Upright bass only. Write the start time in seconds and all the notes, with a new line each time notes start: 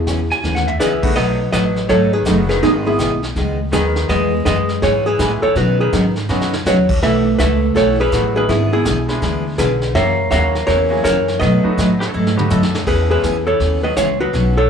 Already playing: E2
0.44 D#2
0.80 C#2
1.16 B1
1.53 A1
1.89 G#1
2.26 F#1
2.63 G#1
2.99 B1
3.36 C#2
3.72 D#2
4.09 E2
4.46 F#2
4.82 G#2
5.19 A2
5.42 muted upright bass stroke
5.55 B2
5.93 G#2
6.29 F#2
6.65 D#2
7.02 B1
7.39 C#2
7.75 B1
8.12 A1
8.49 G#1
8.85 B1
9.22 D2
9.58 B1
9.95 F#2
10.31 D#2
10.68 E2
11.04 F#2
11.41 B2
11.64 muted upright bass stroke
11.78 A2
12.14 G#2
12.50 F#2
12.86 E2
13.23 E2
13.60 D#2
13.96 C#2
14.33 B1